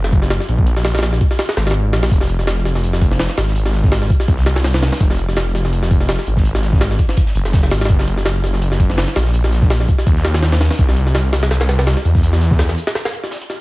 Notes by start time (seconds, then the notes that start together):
Already playing: F#1
0.04 snare
0.12 kick, closed hi-hat
0.22 snare
0.30 snare, closed hi-hat
0.40 snare
0.49 A#1, closed hi-hat
0.58 kick
0.67 closed hi-hat
0.76 snare
0.85 snare, open hi-hat
0.95 snare, open hi-hat
0.99 snare, open hi-hat
1.03 snare, closed hi-hat
1.13 snare
1.21 kick, closed hi-hat
1.31 snare
1.39 snare, open hi-hat
1.49 snare, open hi-hat
1.57 G#1, snare, open hi-hat
1.67 snare, open hi-hat
1.71 snare, open hi-hat
1.93 A#1, snare, open hi-hat
2.03 snare, open hi-hat
2.11 F1, kick, closed hi-hat
2.21 snare
2.29 closed hi-hat
2.39 snare
2.47 snare, closed hi-hat, open hi-hat
2.65 snare, closed hi-hat
2.75 snare, closed hi-hat
2.83 closed hi-hat
2.93 snare
3.01 kick, closed hi-hat
3.11 snare
3.19 snare, closed hi-hat
3.29 snare
3.37 G#1, snare, closed hi-hat, open hi-hat
3.47 snare
3.55 closed hi-hat
3.66 snare
3.74 snare, closed hi-hat
3.84 kick, snare
3.92 snare, closed hi-hat
4.02 snare
4.10 kick, closed hi-hat
4.20 snare
4.28 C2, kick, closed hi-hat
4.38 snare, closed hi-hat
4.46 snare, closed hi-hat, open hi-hat
4.55 snare, closed hi-hat, open hi-hat
4.64 snare, closed hi-hat, open hi-hat
4.74 snare, open hi-hat
4.82 snare, closed hi-hat, open hi-hat
4.92 snare, open hi-hat
5.00 F1, kick, closed hi-hat
5.11 snare
5.18 closed hi-hat
5.29 snare
5.36 snare, closed hi-hat, open hi-hat
5.55 snare, closed hi-hat
5.65 snare, closed hi-hat
5.73 closed hi-hat
5.83 snare
5.91 kick, closed hi-hat
6.01 snare
6.08 snare, closed hi-hat
6.19 snare
6.26 G#1, closed hi-hat
6.37 kick, snare
6.45 closed hi-hat
6.55 snare
6.62 snare, closed hi-hat
6.73 kick, snare
6.81 snare, closed hi-hat
6.91 snare
6.98 kick, closed hi-hat
7.09 snare
7.17 kick, closed hi-hat
7.27 snare, closed hi-hat
7.35 F#1, closed hi-hat
7.45 snare, closed hi-hat
7.53 kick, snare, closed hi-hat
7.63 snare
7.70 G#1, snare, closed hi-hat, open hi-hat
7.81 snare, open hi-hat
7.85 snare, open hi-hat
7.89 F#1, kick, closed hi-hat
7.99 snare
8.07 closed hi-hat
8.17 snare
8.26 snare, closed hi-hat, open hi-hat
8.44 snare, closed hi-hat
8.53 snare, closed hi-hat
8.62 closed hi-hat
8.71 snare
8.80 kick, closed hi-hat
8.90 snare
8.98 snare, closed hi-hat
9.08 snare
9.16 A#1, snare, closed hi-hat, open hi-hat
9.25 snare
9.33 closed hi-hat
9.44 snare
9.52 snare, closed hi-hat
9.62 kick, snare
9.70 snare, closed hi-hat
9.80 snare
9.88 kick, closed hi-hat
9.98 snare
10.07 D#2, kick, closed hi-hat
10.17 snare, closed hi-hat
10.25 snare, closed hi-hat, open hi-hat
10.34 snare, closed hi-hat, open hi-hat
10.42 snare, closed hi-hat, open hi-hat
10.52 snare, open hi-hat
10.60 snare, closed hi-hat, open hi-hat
10.71 snare, open hi-hat
10.78 C2, kick, closed hi-hat
10.88 snare
10.96 closed hi-hat
11.07 snare
11.14 snare, closed hi-hat, open hi-hat
11.33 snare, closed hi-hat, open hi-hat
11.43 snare, open hi-hat
11.51 snare, closed hi-hat, open hi-hat
11.61 snare, open hi-hat
11.69 snare, open hi-hat
11.79 snare, open hi-hat
11.87 snare, closed hi-hat
11.97 snare
12.05 E2, closed hi-hat
12.15 kick, snare
12.23 closed hi-hat
12.33 snare
12.41 snare, closed hi-hat
12.51 kick, snare
12.59 snare, closed hi-hat
12.69 snare
12.77 closed hi-hat, open hi-hat
12.87 snare, open hi-hat
12.95 snare, closed hi-hat, open hi-hat
13.05 snare, open hi-hat
13.14 closed hi-hat
13.23 snare, closed hi-hat
13.31 snare, closed hi-hat
13.42 closed hi-hat
13.50 snare, closed hi-hat